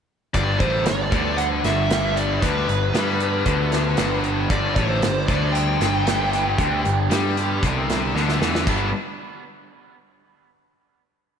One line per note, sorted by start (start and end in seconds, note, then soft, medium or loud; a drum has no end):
0.34 0.58 G1 medium
0.34 1.13 G2 medium
0.34 0.59 G2 medium
0.34 1.11 D3 medium
0.34 1.12 G3 medium
0.34 1.11 B3 medium
0.34 1.11 D4 medium
0.34 1.11 G4 medium
0.34 0.59 D5 medium
0.34 kick medium
0.34 closed hi-hat medium
0.60 0.84 A1 medium
0.60 0.86 A2 medium
0.60 0.86 C5 medium
0.60 kick loud
0.60 closed hi-hat soft
0.86 1.10 G1 medium
0.86 1.07 G2 medium
0.86 1.40 D5 medium
0.86 snare loud
0.86 closed hi-hat medium
1.11 1.61 D2 medium
1.11 1.90 G2 medium
1.11 1.63 D3 medium
1.11 1.89 D3 medium
1.11 1.91 G3 medium
1.11 1.91 B3 medium
1.11 1.91 D4 medium
1.11 1.92 G4 medium
1.11 kick loud
1.11 closed hi-hat medium
1.37 1.44 F#5 medium
1.37 closed hi-hat medium
1.64 2.38 G1 medium
1.64 2.41 G2 medium
1.64 2.18 E5 medium
1.64 snare medium
1.64 closed hi-hat medium
1.90 2.41 G2 medium
1.90 2.41 D3 medium
1.90 2.42 G3 medium
1.90 2.43 B3 medium
1.90 2.43 D4 medium
1.90 2.44 G4 medium
1.90 snare loud
1.90 closed hi-hat medium
2.16 2.42 D5 medium
2.16 closed hi-hat medium
2.42 2.66 D2 medium
2.42 3.22 G2 medium
2.42 2.67 D3 loud
2.42 3.19 D3 medium
2.42 3.22 G3 medium
2.42 3.21 B3 medium
2.42 3.21 D4 medium
2.42 3.20 G4 medium
2.42 4.20 B4 medium
2.42 kick medium
2.42 closed hi-hat medium
2.68 2.92 G1 medium
2.68 2.89 G2 medium
2.68 closed hi-hat medium
2.94 3.42 G2 medium
2.94 3.45 G3 medium
2.94 snare loud
2.94 closed hi-hat medium
3.20 3.97 G2 medium
3.20 3.97 D3 medium
3.20 3.98 G3 medium
3.20 3.98 B3 medium
3.20 3.98 D4 medium
3.20 3.99 G4 medium
3.20 closed hi-hat medium
3.45 3.94 D2 medium
3.45 3.97 D3 medium
3.45 kick medium
3.45 closed hi-hat medium
3.72 snare medium
3.72 closed hi-hat medium
3.97 4.47 G1 medium
3.97 4.50 G2 medium
3.97 4.48 G2 loud
3.97 4.48 D3 medium
3.97 4.51 G3 medium
3.97 4.51 B3 medium
3.97 4.52 D4 medium
3.97 4.52 G4 medium
3.97 snare loud
3.97 closed hi-hat medium
4.24 closed hi-hat medium
4.50 4.74 G1 medium
4.50 4.75 G2 loud
4.50 5.29 G2 medium
4.50 5.27 D3 medium
4.50 5.28 G3 medium
4.50 5.28 B3 medium
4.50 5.28 D4 medium
4.50 5.27 G4 loud
4.50 4.75 D5 medium
4.50 kick loud
4.50 closed hi-hat medium
4.75 5.01 A1 medium
4.75 5.02 A2 medium
4.75 5.24 C5 medium
4.75 kick medium
4.75 closed hi-hat medium
5.02 5.26 G1 medium
5.02 5.23 G2 medium
5.02 snare loud
5.02 closed hi-hat medium
5.26 5.77 D2 medium
5.26 6.05 G2 medium
5.26 5.80 D3 medium
5.26 6.05 D3 medium
5.26 6.06 G3 medium
5.26 6.06 B3 medium
5.26 6.07 D4 medium
5.26 6.07 G4 medium
5.26 5.54 D5 medium
5.26 kick medium
5.26 closed hi-hat medium
5.52 8.10 G5 medium
5.52 closed hi-hat medium
5.79 6.55 G1 medium
5.79 6.57 G2 loud
5.79 snare medium
5.79 closed hi-hat medium
6.05 6.57 G2 medium
6.05 6.57 D3 medium
6.05 6.58 G3 medium
6.05 6.59 B3 medium
6.05 6.58 D4 medium
6.05 6.59 G4 medium
6.05 snare loud
6.05 closed hi-hat medium
6.33 snare soft
6.33 closed hi-hat medium
6.57 6.83 D2 medium
6.57 7.35 G2 medium
6.57 7.35 D3 medium
6.57 6.84 D3 loud
6.57 7.35 G3 medium
6.57 7.35 B3 medium
6.57 7.35 D4 loud
6.57 7.36 G4 loud
6.57 kick medium
6.57 closed hi-hat medium
6.84 7.09 G1 medium
6.84 7.06 G2 medium
6.84 closed hi-hat soft
7.10 7.59 G2 medium
7.10 7.62 G3 medium
7.10 snare medium
7.10 closed hi-hat medium
7.37 8.13 G2 medium
7.37 8.13 D3 medium
7.37 8.14 G3 medium
7.37 8.14 B3 medium
7.37 8.14 D4 medium
7.37 8.13 G4 medium
7.37 closed hi-hat medium
7.62 8.11 C2 medium
7.62 8.14 C3 medium
7.62 kick medium
7.62 closed hi-hat medium
7.90 snare medium
7.90 closed hi-hat soft
8.14 8.39 D2 medium
8.14 8.65 G2 medium
8.14 8.65 D3 medium
8.14 8.40 D3 medium
8.14 8.65 G3 medium
8.14 8.66 B3 medium
8.14 8.66 D4 medium
8.14 8.66 G4 medium
8.14 snare soft
8.29 snare medium
8.41 8.66 E2 medium
8.41 8.66 E3 loud
8.41 snare medium
8.55 snare medium
8.66 8.91 G1 medium
8.66 8.88 G2 medium
8.66 8.88 D3 medium
8.66 8.88 G3 medium
8.66 8.88 B3 loud
8.66 8.88 D4 medium
8.66 8.89 D4 loud
8.66 8.88 B4 medium
8.66 kick loud
8.66 crash medium